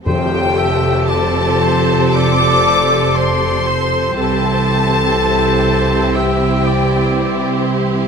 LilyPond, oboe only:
\new Staff \with { instrumentName = "Oboe" } { \time 4/4 \key f \major \tempo 4 = 60 c''8 e''8 d''8 c''8 a'4 d''8 c''8~ | c''4 c''4 e''8 d''4 r8 | }